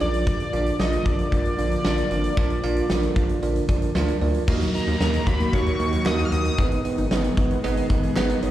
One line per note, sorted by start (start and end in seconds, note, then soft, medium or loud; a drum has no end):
0.00 0.37 A#1 medium
0.00 4.44 D3 medium
0.00 4.44 F3 medium
0.00 4.44 A#3 medium
0.00 0.43 D4 medium
0.00 4.44 F4 medium
0.00 0.43 F4 medium
0.00 0.43 A#4 medium
0.00 0.43 D5 medium
0.00 0.25 D5 loud
0.00 closed hi-hat medium
0.14 closed hi-hat medium
0.27 0.81 D5 loud
0.27 kick loud
0.27 closed hi-hat medium
0.40 closed hi-hat medium
0.53 0.72 A#1 loud
0.53 0.74 D4 medium
0.53 0.74 F4 medium
0.53 0.74 A#4 medium
0.53 0.74 F5 loud
0.53 closed hi-hat medium
0.66 closed hi-hat medium
0.79 0.98 A#1 loud
0.79 1.00 D4 medium
0.79 1.00 F4 medium
0.79 1.00 A#4 medium
0.79 1.00 D5 medium
0.79 1.07 D#5 loud
0.79 snare loud
0.93 closed hi-hat medium
1.06 1.24 A#1 loud
1.06 1.26 D4 medium
1.06 1.26 F4 medium
1.06 1.26 A#4 medium
1.06 1.26 D5 medium
1.06 3.95 D5 loud
1.06 kick medium
1.06 closed hi-hat medium
1.19 closed hi-hat soft
1.32 1.51 A#1 loud
1.32 1.53 D4 medium
1.32 1.53 F4 medium
1.32 1.53 A#4 medium
1.32 1.53 D5 medium
1.32 kick medium
1.32 closed hi-hat medium
1.45 closed hi-hat medium
1.58 1.77 A#1 loud
1.58 1.79 D4 medium
1.58 1.79 F4 medium
1.58 1.79 A#4 medium
1.58 1.79 F5 medium
1.58 closed hi-hat medium
1.71 closed hi-hat medium
1.85 2.03 A#1 medium
1.85 2.05 D4 loud
1.85 2.05 F4 loud
1.85 2.05 A#4 loud
1.85 2.05 D5 loud
1.85 snare loud
1.98 closed hi-hat medium
2.11 2.30 G#1 medium
2.11 2.32 D4 medium
2.11 2.32 F4 medium
2.11 2.32 A#4 medium
2.11 2.32 D5 loud
2.11 closed hi-hat medium
2.24 closed hi-hat medium
2.37 2.56 A#1 loud
2.37 2.58 D4 loud
2.37 2.58 F4 loud
2.37 2.58 A#4 loud
2.37 2.58 D5 loud
2.37 kick loud
2.37 closed hi-hat medium
2.50 closed hi-hat medium
2.63 2.82 A#1 loud
2.63 2.84 D4 loud
2.63 2.84 F4 loud
2.63 2.84 A#4 loud
2.63 2.84 F5 loud
2.63 closed hi-hat medium
2.77 closed hi-hat medium
2.90 3.08 A#1 loud
2.90 3.11 D4 medium
2.90 3.11 F4 medium
2.90 3.11 A#4 medium
2.90 3.11 D5 loud
2.90 snare loud
3.03 closed hi-hat medium
3.16 3.35 A#1 loud
3.16 3.37 D4 medium
3.16 3.37 F4 medium
3.16 3.37 A#4 medium
3.16 3.37 F5 loud
3.16 kick loud
3.16 closed hi-hat medium
3.29 closed hi-hat medium
3.43 3.61 A#1 loud
3.43 3.63 D4 medium
3.43 3.63 F4 medium
3.43 3.63 A#4 medium
3.43 3.63 D5 loud
3.43 closed hi-hat medium
3.56 closed hi-hat medium
3.69 3.87 A#1 loud
3.69 3.90 D4 medium
3.69 3.90 F4 medium
3.69 3.90 A#4 medium
3.69 3.90 D5 loud
3.69 kick medium
3.69 closed hi-hat medium
3.82 closed hi-hat medium
3.95 4.14 D2 loud
3.95 4.16 D4 loud
3.95 4.16 F4 loud
3.95 4.16 A#4 loud
3.95 4.16 D5 loud
3.95 snare loud
4.08 closed hi-hat medium
4.21 4.40 D2 medium
4.21 4.42 D4 medium
4.21 4.42 F4 medium
4.21 4.42 A#4 medium
4.21 4.42 D5 loud
4.21 open hi-hat medium
4.34 closed hi-hat medium
4.48 4.66 D#2 loud
4.48 4.60 D#3 loud
4.48 6.56 D#3 medium
4.48 6.56 F#3 medium
4.48 4.69 A#3 loud
4.48 6.56 A#3 medium
4.48 4.69 D#4 loud
4.48 4.69 F#4 loud
4.48 6.56 F#4 medium
4.48 4.69 A#4 loud
4.48 4.69 D#5 loud
4.48 kick loud
4.48 crash loud
4.48 downlifter medium
4.61 4.73 F#3 medium
4.61 closed hi-hat medium
4.74 4.95 A#3 medium
4.74 4.95 D#4 medium
4.74 4.95 F#4 medium
4.74 4.95 A#4 medium
4.74 4.95 D#5 medium
4.74 5.29 A#5 medium
4.74 closed hi-hat medium
4.87 4.97 D#2 loud
4.87 5.00 D#4 medium
4.87 closed hi-hat medium
5.01 5.19 D#2 loud
5.01 5.21 A#3 medium
5.01 5.21 D#4 medium
5.01 5.21 F#4 medium
5.01 5.21 A#4 medium
5.01 5.13 D#5 medium
5.01 5.21 D#5 medium
5.01 snare loud
5.14 5.26 D#3 medium
5.14 closed hi-hat medium
5.27 5.45 D#2 loud
5.27 5.39 F#3 medium
5.27 5.48 A#3 medium
5.27 5.48 D#4 medium
5.27 5.48 F#4 medium
5.27 5.48 A#4 medium
5.27 5.48 F5 medium
5.27 5.55 B5 medium
5.27 kick loud
5.27 closed hi-hat medium
5.40 5.52 A#3 medium
5.40 closed hi-hat medium
5.53 5.72 D#2 loud
5.53 5.74 A#3 loud
5.53 5.74 D#4 medium
5.53 5.66 D#4 loud
5.53 5.74 F#4 medium
5.53 5.74 A#4 medium
5.53 5.74 C#5 loud
5.53 6.08 C#6 loud
5.53 kick loud
5.53 closed hi-hat medium
5.66 5.79 D#5 medium
5.66 closed hi-hat medium
5.80 5.98 D#2 loud
5.80 5.92 D#3 medium
5.80 6.00 A#3 medium
5.80 6.00 D#4 medium
5.80 6.00 F#4 medium
5.80 6.00 A#4 medium
5.80 6.00 D#5 medium
5.80 closed hi-hat medium
5.93 6.05 F#3 medium
5.93 closed hi-hat medium
6.06 6.24 D#2 loud
6.06 6.27 A#3 loud
6.06 6.18 A#3 medium
6.06 6.27 D#4 medium
6.06 6.27 F#4 medium
6.06 6.27 A#4 medium
6.06 6.27 D#5 loud
6.06 6.25 D#6 loud
6.06 snare loud
6.06 clap medium
6.19 6.31 D#4 medium
6.19 closed hi-hat medium
6.25 6.34 F6 medium
6.32 6.50 D#2 loud
6.32 6.53 A#3 medium
6.32 6.53 D#4 medium
6.32 6.53 F#4 medium
6.32 6.53 A#4 medium
6.32 6.53 D#5 medium
6.32 6.44 D#5 medium
6.32 6.85 D#6 loud
6.32 closed hi-hat medium
6.45 6.57 D#3 medium
6.45 closed hi-hat medium
6.58 6.77 G#1 loud
6.58 6.71 D#3 loud
6.58 8.51 D#3 medium
6.58 8.51 G#3 medium
6.58 6.79 B3 loud
6.58 8.51 B3 medium
6.58 6.79 D#4 medium
6.58 8.51 G#4 medium
6.58 6.79 G#4 loud
6.58 6.79 B4 medium
6.58 6.79 D#5 loud
6.58 kick loud
6.58 closed hi-hat medium
6.72 6.84 G#3 medium
6.72 closed hi-hat medium
6.85 7.06 B3 medium
6.85 7.06 D#4 medium
6.85 7.06 G#4 medium
6.85 7.06 B4 medium
6.85 7.06 D#5 medium
6.85 closed hi-hat medium
6.98 7.07 G#1 loud
6.98 7.10 D#4 medium
6.98 closed hi-hat medium
7.11 7.30 G#1 loud
7.11 7.32 B3 medium
7.11 7.32 D#4 medium
7.11 7.32 G#4 medium
7.11 7.32 B4 medium
7.11 7.23 D#5 loud
7.11 7.32 D#5 loud
7.11 snare loud
7.24 7.37 D#3 medium
7.24 closed hi-hat medium
7.37 7.56 G#1 loud
7.37 7.50 G#3 medium
7.37 7.58 B3 medium
7.37 7.58 D#4 medium
7.37 7.58 G#4 medium
7.37 7.58 B4 medium
7.37 7.58 D#5 loud
7.37 kick loud
7.37 closed hi-hat medium
7.51 7.63 B3 medium
7.51 closed hi-hat medium
7.64 7.82 G#1 loud
7.64 7.85 B3 loud
7.64 7.76 D#4 loud
7.64 7.85 D#4 loud
7.64 7.85 G#4 loud
7.64 7.85 B4 loud
7.64 7.85 D#5 loud
7.64 closed hi-hat medium
7.77 7.89 D#5 medium
7.77 closed hi-hat medium
7.90 8.08 G#1 loud
7.90 8.02 D#3 medium
7.90 8.11 B3 medium
7.90 8.11 D#4 medium
7.90 8.11 G#4 medium
7.90 8.11 B4 medium
7.90 8.11 D#5 loud
7.90 kick medium
7.90 closed hi-hat medium
8.03 8.15 G#3 medium
8.03 closed hi-hat medium
8.16 8.35 G#1 loud
8.16 8.29 B3 medium
8.16 8.37 B3 loud
8.16 8.37 D#4 loud
8.16 8.37 G#4 loud
8.16 8.37 B4 loud
8.16 8.37 D#5 loud
8.16 snare loud
8.16 clap medium
8.29 8.42 D#4 medium
8.29 closed hi-hat medium
8.42 8.51 G#1 loud
8.42 8.51 B3 medium
8.42 8.51 D#4 medium
8.42 8.51 G#4 medium
8.42 8.51 B4 medium
8.42 8.51 C#5 loud
8.42 8.51 D#5 medium
8.42 closed hi-hat medium